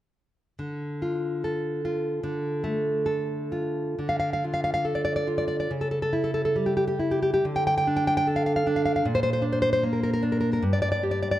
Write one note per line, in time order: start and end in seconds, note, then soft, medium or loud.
0.59 2.21 D3 soft
1.02 1.84 F4 soft
1.44 2.65 A4 soft
1.85 3.07 F4 soft
2.23 3.95 D3 medium
2.64 3.99 A3 soft
3.06 3.99 A4 soft
3.52 3.99 F4 soft
3.99 5.66 D3 soft
4.09 4.18 F5 medium
4.20 4.32 F5 medium
4.33 4.44 F5 medium
4.44 5.26 F4 soft
4.54 4.63 F5 soft
4.64 4.73 F5 medium
4.74 4.85 F5 medium
4.85 5.70 A4 soft
4.95 5.04 D5 soft
5.05 5.15 D5 medium
5.16 5.28 D5 medium
5.27 5.70 F4 soft
5.38 5.47 D5 soft
5.48 5.59 D5 medium
5.60 5.71 D5 medium
5.71 7.40 C#3 soft
5.81 5.90 A4 medium
5.91 6.01 A4 soft
6.02 6.13 A4 medium
6.13 6.98 E4 soft
6.24 6.33 A4 medium
6.34 6.44 A4 medium
6.45 6.56 A4 medium
6.56 7.45 G3 soft
6.66 6.76 G4 soft
6.77 6.86 G4 medium
6.88 6.99 G4 medium
6.99 7.44 E4 soft
7.11 7.21 G4 medium
7.23 7.32 G4 medium
7.34 7.45 G4 medium
7.45 9.02 D3 medium
7.56 7.66 G5 medium
7.67 7.76 G5 medium
7.78 7.87 G5 medium
7.87 8.65 D4 soft
7.96 8.06 G5 medium
8.07 8.16 G5 medium
8.17 8.27 G5 medium
8.27 9.06 A4 soft
8.36 8.45 F5 soft
8.46 8.55 F5 medium
8.56 8.66 F5 medium
8.67 9.06 D4 soft
8.76 8.84 F5 medium
8.86 8.95 F5 medium
8.96 9.06 F5 medium
9.05 10.59 A#2 medium
9.15 9.22 C5 medium
9.23 9.32 C5 medium
9.33 9.44 C5 medium
9.42 10.21 D4 soft
9.53 9.61 C5 medium
9.62 9.72 C5 medium
9.73 9.83 C5 medium
9.83 10.63 A#3 soft
9.93 10.02 A#4 soft
10.03 10.12 A#4 medium
10.13 10.23 A#4 medium
10.23 10.63 D4 soft
10.32 10.39 A#4 medium
10.41 10.52 A#4 medium
10.53 10.63 A#4 medium
10.63 11.39 G2 medium
10.73 10.81 D5 medium
10.82 10.91 D5 medium
10.92 11.03 D5 medium
11.03 11.39 G4 soft
11.11 11.21 D5 medium
11.23 11.30 D5 medium
11.31 11.39 D5 medium